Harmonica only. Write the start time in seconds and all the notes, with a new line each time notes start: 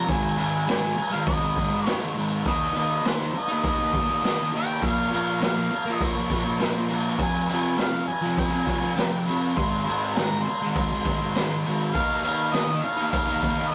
Already playing: A#5
0.11 G#5
0.40 G#5
0.70 G#5
1.13 F5
1.26 D#5
1.87 C#5
2.47 D#5
2.77 D#5
3.06 C5
3.38 D#5
3.66 D#5
4.56 G5
4.85 F5
5.13 F5
5.44 F5
5.89 D#5
6.04 C#5
6.61 C5
7.22 G#5
7.49 G#5
7.78 F5
8.07 G#5
8.38 G#5
8.95 G5
9.56 C6
9.85 C6
10.14 A#5
10.43 C6
10.72 C6
11.94 F5
12.23 F5
12.53 D#5
12.76 D#5
12.81 F5
13.11 F5
13.68 D#5